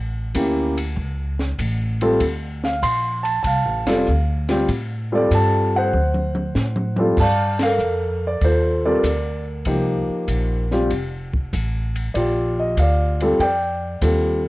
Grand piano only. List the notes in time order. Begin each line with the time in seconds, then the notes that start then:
0.35 A#3 C#4 E4 G4
2.02 G3 C4 F4 A4
2.65 F5
2.83 C6
3.23 A5
3.43 A5
3.47 F5
3.87 G3 C4 F4 A4 F5
4.49 G3 C4 F4 G4
5.12 G3 C4 F4 A4 D5
5.34 A5
5.76 C5 F#5
6.98 G3 C4 F4 A4
7.20 D5 F5 A5
7.63 A4 A#4 F5
8.27 D5
8.44 F4 A4 C5
8.85 G3 C4 F4 A4 A#4 D5
9.67 F3 A#3 D#4 G4
10.72 G3 C4 F4 G4
12.14 F4 G4 D5
12.59 D#5
12.79 D5 F5
13.22 G3 C4 F4 A4
13.41 D5 G5
14.02 G3 C4 F4 A4